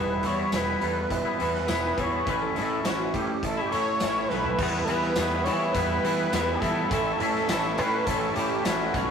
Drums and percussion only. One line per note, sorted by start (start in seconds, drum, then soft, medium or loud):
0.23 closed hi-hat medium
0.52 snare loud
0.52 closed hi-hat medium
0.52 tambourine loud
0.81 closed hi-hat medium
1.10 kick medium
1.10 closed hi-hat medium
1.40 closed hi-hat medium
1.54 snare soft
1.68 snare loud
1.68 closed hi-hat medium
1.68 tambourine loud
1.98 kick medium
1.98 closed hi-hat medium
2.27 kick loud
2.27 closed hi-hat medium
2.56 closed hi-hat medium
2.85 snare loud
2.85 closed hi-hat medium
2.85 tambourine loud
3.14 kick medium
3.14 closed hi-hat medium
3.43 kick medium
3.43 closed hi-hat medium
3.72 closed hi-hat medium
4.00 snare loud
4.00 closed hi-hat medium
4.00 tambourine loud
4.30 snare soft
4.44 floor tom medium
4.59 kick loud
4.59 crash loud
4.87 closed hi-hat medium
5.02 snare soft
5.16 snare loud
5.16 closed hi-hat loud
5.16 tambourine loud
5.46 closed hi-hat medium
5.74 kick medium
5.74 closed hi-hat loud
6.04 closed hi-hat medium
6.33 snare loud
6.33 closed hi-hat loud
6.33 tambourine loud
6.62 kick medium
6.62 closed hi-hat medium
6.91 kick loud
6.91 closed hi-hat loud
7.20 closed hi-hat medium
7.36 snare soft
7.49 snare loud
7.49 closed hi-hat loud
7.49 tambourine loud
7.78 closed hi-hat medium
8.07 kick medium
8.07 closed hi-hat loud
8.36 closed hi-hat medium
8.65 snare loud
8.65 closed hi-hat loud
8.65 tambourine loud
8.94 kick medium
8.94 closed hi-hat medium